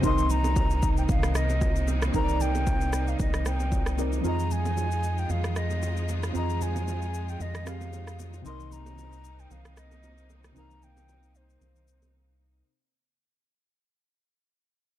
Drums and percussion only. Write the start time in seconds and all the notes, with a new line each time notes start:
0.03 kick, low conga, shaker
0.18 shaker
0.30 low conga, shaker
0.44 low bongo, shaker
0.56 kick, high bongo, shaker
0.70 shaker
0.82 kick, shaker
0.97 shaker
1.09 kick, low bongo, low conga, shaker
1.23 cross-stick, shaker
1.35 cross-stick, shaker
1.49 low bongo, shaker
1.61 kick, high bongo, shaker
1.76 shaker
1.88 low bongo, shaker
2.02 cross-stick, high bongo, shaker
2.14 kick, low conga, shaker
2.29 shaker
2.40 low conga, shaker
2.55 low bongo, shaker
2.67 kick, high bongo, shaker
2.81 shaker
2.93 cross-stick, shaker
3.07 shaker
3.19 kick, low bongo, low conga, shaker
3.34 cross-stick, shaker
3.45 cross-stick, shaker
3.60 low bongo, shaker
3.72 kick, high bongo, shaker
3.86 cross-stick, shaker
3.98 low bongo, shaker
4.13 high bongo, shaker
4.25 low conga, shaker
4.39 shaker
4.51 low conga, shaker
4.65 low bongo, shaker
4.77 high bongo, shaker
4.91 shaker
5.03 shaker
5.18 shaker
5.30 low bongo, low conga, shaker
5.44 cross-stick, shaker
5.56 cross-stick, shaker
5.70 low bongo, shaker
5.82 high bongo, shaker
5.97 shaker
6.09 low bongo, shaker
6.23 cross-stick, high bongo, shaker
6.35 low conga, shaker
6.50 shaker
6.61 low conga, shaker
6.76 low bongo, shaker
6.88 high bongo, shaker
7.02 shaker
7.14 shaker
7.29 shaker
7.40 low bongo, low conga, shaker
7.55 cross-stick, shaker
7.67 cross-stick, shaker
7.81 low bongo, shaker
7.93 high bongo, shaker
8.07 cross-stick, shaker
8.19 low bongo, shaker
8.34 high bongo, shaker
8.45 low conga, shaker
8.60 shaker
8.72 low conga, shaker
8.86 low bongo, shaker
8.98 high bongo, shaker
9.12 shaker
9.24 shaker
9.39 shaker
9.51 low bongo, low conga, shaker
9.65 cross-stick, shaker
9.77 cross-stick, shaker
9.91 low bongo, shaker
10.03 high bongo, shaker
10.18 shaker
10.30 low bongo, shaker
10.44 cross-stick, high bongo, shaker
10.56 low conga, shaker
10.71 shaker
10.82 low conga, shaker
10.97 low bongo, shaker
11.09 high bongo, shaker
11.23 shaker
11.35 shaker
11.50 shaker
11.62 low bongo, low conga, shaker
11.76 shaker
11.88 shaker
12.02 low bongo, shaker